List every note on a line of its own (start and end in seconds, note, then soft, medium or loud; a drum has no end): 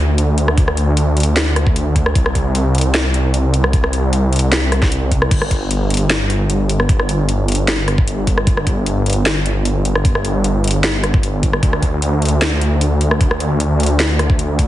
0.00 2.14 D2 medium
0.18 closed hi-hat medium
0.38 closed hi-hat medium
0.48 cross-stick medium
0.58 kick loud
0.58 closed hi-hat medium
0.68 cross-stick medium
0.77 closed hi-hat medium
0.97 closed hi-hat medium
1.17 closed hi-hat medium
1.20 closed hi-hat medium
1.23 closed hi-hat medium
1.36 snare loud
1.36 closed hi-hat medium
1.56 cross-stick medium
1.56 closed hi-hat medium
1.67 kick loud
1.76 closed hi-hat medium
1.96 kick medium
1.96 closed hi-hat medium
2.06 cross-stick medium
2.15 5.29 C2 medium
2.15 kick loud
2.15 closed hi-hat medium
2.26 cross-stick medium
2.35 kick medium
2.35 closed hi-hat medium
2.55 closed hi-hat medium
2.75 closed hi-hat medium
2.78 closed hi-hat medium
2.81 closed hi-hat medium
2.94 snare loud
2.94 closed hi-hat medium
3.14 closed hi-hat medium
3.34 closed hi-hat medium
3.54 closed hi-hat medium
3.64 cross-stick medium
3.73 kick loud
3.73 closed hi-hat medium
3.84 cross-stick medium
3.93 closed hi-hat medium
4.13 closed hi-hat medium
4.33 closed hi-hat medium
4.36 closed hi-hat medium
4.39 closed hi-hat medium
4.52 snare loud
4.52 closed hi-hat medium
4.72 cross-stick medium
4.72 closed hi-hat medium
4.82 kick loud
4.82 snare soft
4.92 closed hi-hat medium
5.12 kick medium
5.12 closed hi-hat medium
5.22 cross-stick medium
5.31 11.61 G1 loud
5.31 kick loud
5.31 closed hi-hat medium
5.31 crash medium
5.42 cross-stick medium
5.51 kick medium
5.51 closed hi-hat medium
5.71 closed hi-hat medium
5.90 closed hi-hat medium
5.94 closed hi-hat medium
5.97 closed hi-hat medium
6.10 snare loud
6.10 closed hi-hat medium
6.30 closed hi-hat medium
6.50 closed hi-hat medium
6.69 closed hi-hat medium
6.80 cross-stick medium
6.89 kick loud
6.89 closed hi-hat medium
7.00 cross-stick medium
7.09 closed hi-hat medium
7.29 closed hi-hat medium
7.48 closed hi-hat soft
7.52 closed hi-hat medium
7.55 closed hi-hat medium
7.68 snare loud
7.68 closed hi-hat medium
7.88 cross-stick medium
7.88 closed hi-hat medium
7.98 kick loud
8.08 closed hi-hat medium
8.27 kick medium
8.27 closed hi-hat medium
8.38 cross-stick medium
8.47 kick loud
8.47 closed hi-hat medium
8.57 cross-stick medium
8.67 kick medium
8.67 closed hi-hat medium
8.86 closed hi-hat medium
9.06 closed hi-hat soft
9.10 closed hi-hat medium
9.13 closed hi-hat medium
9.26 snare loud
9.26 closed hi-hat medium
9.46 closed hi-hat medium
9.65 closed hi-hat medium
9.85 closed hi-hat medium
9.96 cross-stick medium
10.05 kick loud
10.05 closed hi-hat medium
10.15 cross-stick medium
10.25 closed hi-hat medium
10.44 closed hi-hat medium
10.64 closed hi-hat soft
10.68 closed hi-hat medium
10.71 closed hi-hat medium
10.84 snare loud
10.84 closed hi-hat medium
11.04 cross-stick medium
11.04 closed hi-hat medium
11.14 kick loud
11.23 closed hi-hat medium
11.43 kick medium
11.43 closed hi-hat medium
11.53 cross-stick medium
11.63 14.68 D2 medium
11.63 kick loud
11.63 closed hi-hat medium
11.73 cross-stick medium
11.83 kick medium
11.83 closed hi-hat medium
12.02 closed hi-hat medium
12.22 closed hi-hat soft
12.25 closed hi-hat medium
12.29 closed hi-hat medium
12.42 snare loud
12.42 closed hi-hat medium
12.61 closed hi-hat medium
12.81 closed hi-hat medium
13.01 closed hi-hat medium
13.11 cross-stick medium
13.21 kick loud
13.21 closed hi-hat medium
13.31 cross-stick medium
13.40 closed hi-hat medium
13.60 closed hi-hat medium
13.80 closed hi-hat soft
13.83 closed hi-hat medium
13.86 closed hi-hat medium
14.00 snare loud
14.00 closed hi-hat medium
14.19 cross-stick medium
14.19 closed hi-hat medium
14.30 kick loud
14.39 closed hi-hat medium
14.59 kick medium
14.59 closed hi-hat medium